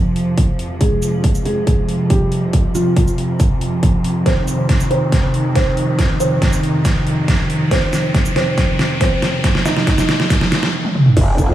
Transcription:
0.00 10.69 F2 medium
0.00 10.70 C3 medium
0.00 4.24 F3 medium
0.00 0.72 C4 medium
0.00 0.72 C5 medium
0.00 riser medium
0.16 closed hi-hat medium
0.38 kick loud
0.38 closed hi-hat medium
0.59 closed hi-hat medium
0.81 1.37 G#3 medium
0.81 1.37 G#4 medium
0.81 kick medium
0.81 closed hi-hat medium
1.02 closed hi-hat soft
1.02 shaker medium
1.24 kick medium
1.24 closed hi-hat medium
1.35 shaker medium
1.45 2.02 G#3 medium
1.45 2.02 G#4 medium
1.45 closed hi-hat medium
1.67 kick medium
1.67 closed hi-hat medium
1.89 closed hi-hat soft
2.10 2.66 G3 medium
2.10 2.66 G4 medium
2.10 kick medium
2.10 closed hi-hat medium
2.32 closed hi-hat medium
2.53 kick medium
2.53 closed hi-hat medium
2.75 4.18 F3 medium
2.75 4.18 F4 medium
2.75 closed hi-hat soft
2.75 shaker medium
2.96 kick loud
2.96 closed hi-hat medium
3.08 shaker medium
3.18 closed hi-hat soft
3.40 kick medium
3.40 closed hi-hat medium
3.40 shaker soft
3.61 closed hi-hat soft
3.83 kick medium
3.83 closed hi-hat medium
4.04 closed hi-hat medium
4.26 10.72 D#3 medium
4.26 4.82 C4 medium
4.26 4.82 C5 medium
4.26 kick medium
4.26 snare soft
4.26 closed hi-hat medium
4.48 closed hi-hat soft
4.48 shaker medium
4.69 kick loud
4.69 snare medium
4.69 closed hi-hat medium
4.80 shaker medium
4.91 5.47 C4 medium
4.91 5.47 C5 medium
4.91 closed hi-hat soft
5.12 kick loud
5.12 snare medium
5.12 closed hi-hat medium
5.34 closed hi-hat soft
5.55 6.12 C4 medium
5.55 6.12 C5 medium
5.55 kick loud
5.55 snare medium
5.55 closed hi-hat medium
5.77 closed hi-hat medium
5.99 kick medium
5.99 snare medium
5.99 closed hi-hat medium
6.20 7.63 C4 medium
6.20 7.63 C5 medium
6.20 closed hi-hat soft
6.20 shaker medium
6.42 kick loud
6.42 snare medium
6.42 closed hi-hat medium
6.53 shaker medium
6.63 closed hi-hat medium
6.85 kick loud
6.85 snare medium
6.85 closed hi-hat medium
6.85 shaker medium
7.07 closed hi-hat medium
7.28 kick medium
7.28 snare medium
7.28 closed hi-hat medium
7.50 closed hi-hat medium
7.71 8.28 C4 medium
7.71 8.28 C5 loud
7.71 kick medium
7.71 snare medium
7.71 closed hi-hat medium
7.93 snare medium
7.93 closed hi-hat medium
7.93 shaker medium
8.15 kick loud
8.15 snare medium
8.15 closed hi-hat medium
8.25 shaker medium
8.36 8.92 C4 medium
8.36 8.92 C5 medium
8.36 snare medium
8.36 closed hi-hat medium
8.58 kick loud
8.58 snare medium
8.58 closed hi-hat medium
8.79 snare medium
8.79 closed hi-hat medium
9.01 9.57 C4 medium
9.01 9.57 C5 medium
9.01 kick loud
9.01 snare medium
9.01 closed hi-hat medium
9.22 snare medium
9.22 closed hi-hat medium
9.44 kick medium
9.44 snare loud
9.44 closed hi-hat medium
9.55 snare medium
9.65 10.73 D#4 medium
9.65 10.74 D#5 medium
9.65 snare medium
9.65 closed hi-hat medium
9.65 shaker medium
9.77 snare medium
9.87 kick loud
9.87 snare loud
9.87 closed hi-hat medium
9.98 snare medium
9.98 shaker medium
10.09 snare loud
10.09 closed hi-hat medium
10.20 snare medium
10.30 kick loud
10.30 snare loud
10.30 closed hi-hat medium
10.30 shaker medium
10.41 snare medium
10.52 snare loud
10.52 closed hi-hat medium
10.63 snare medium
10.85 high tom medium
10.95 mid tom medium
11.06 mid tom medium
11.17 11.48 F1 loud
11.17 11.54 F3 medium
11.17 11.54 C4 medium
11.17 11.54 G#4 medium
11.17 kick loud
11.17 closed hi-hat medium
11.17 crash loud
11.38 kick loud
11.38 closed hi-hat medium
11.38 shaker medium
11.49 11.54 F2 medium

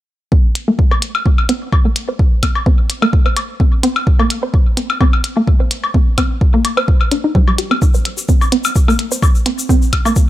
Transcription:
0.32 0.38 C4 medium
0.32 kick loud
0.55 closed hi-hat medium
0.68 0.71 A#3 loud
0.79 kick loud
0.91 0.93 C5 medium
0.91 high woodblock medium
1.02 closed hi-hat medium
1.15 low woodblock medium
1.26 1.31 C4 medium
1.26 kick loud
1.38 low woodblock medium
1.49 1.55 C4 loud
1.49 closed hi-hat medium
1.72 kick loud
1.72 high woodblock medium
1.85 1.88 A#3 loud
1.96 closed hi-hat medium
2.09 2.11 C5 medium
2.19 kick loud
2.43 2.49 C4 medium
2.43 kick medium
2.43 closed hi-hat medium
2.43 low woodblock medium
2.55 high woodblock medium
2.66 2.72 C4 loud
2.66 kick loud
2.90 closed hi-hat medium
3.02 3.06 A#3 medium
3.02 low woodblock medium
3.13 kick loud
3.26 3.28 C5 medium
3.26 low woodblock medium
3.37 closed hi-hat medium
3.37 high woodblock medium
3.60 3.66 C4 medium
3.60 kick loud
3.83 3.89 C4 loud
3.83 closed hi-hat medium
3.96 low woodblock medium
4.07 kick loud
4.19 4.23 A#3 loud
4.19 high woodblock medium
4.30 closed hi-hat medium
4.43 4.45 C5 medium
4.54 kick loud
4.77 4.83 C4 medium
4.77 closed hi-hat medium
4.90 low woodblock medium
5.01 5.06 C4 loud
5.01 kick loud
5.01 high woodblock medium
5.13 low woodblock medium
5.24 closed hi-hat medium
5.37 5.40 A#3 loud
5.47 kick loud
5.60 5.62 C5 medium
5.71 closed hi-hat medium
5.84 high woodblock medium
5.94 6.00 C4 medium
5.94 kick loud
6.18 6.23 C4 medium
6.18 kick medium
6.18 closed hi-hat medium
6.18 low woodblock medium
6.41 kick loud
6.54 6.57 A#3 medium
6.65 closed hi-hat medium
6.65 high woodblock medium
6.77 6.79 C5 medium
6.77 low woodblock medium
6.88 kick loud
7.01 low woodblock medium
7.12 7.14 D4 medium
7.12 closed hi-hat medium
7.24 7.27 D#4 medium
7.35 7.39 G3 loud
7.35 kick loud
7.48 7.50 G3 medium
7.48 high woodblock medium
7.58 7.61 G4 medium
7.58 closed hi-hat medium
7.71 7.76 C4 medium
7.71 low woodblock medium
7.82 kick loud
7.82 shaker medium
7.94 7.96 C5 medium
7.94 shaker soft
8.05 closed hi-hat medium
8.18 shaker medium
8.29 8.34 C4 medium
8.29 kick loud
8.29 shaker medium
8.41 high woodblock medium
8.41 shaker soft
8.52 8.58 C4 medium
8.52 closed hi-hat medium
8.64 low woodblock medium
8.64 shaker medium
8.75 kick loud
8.75 shaker medium
8.88 8.92 A#3 loud
8.88 low woodblock medium
8.88 shaker soft
8.99 closed hi-hat medium
9.12 9.14 C5 medium
9.12 shaker medium
9.22 kick loud
9.22 high woodblock medium
9.22 shaker medium
9.35 shaker soft
9.46 9.52 C4 medium
9.46 closed hi-hat medium
9.59 shaker medium
9.69 9.75 C4 loud
9.69 kick loud
9.69 shaker medium
9.82 shaker soft
9.93 kick medium
9.93 closed hi-hat medium
9.93 low woodblock medium
10.05 10.09 A#3 loud
10.05 high woodblock medium
10.05 shaker medium
10.16 kick loud
10.16 shaker medium

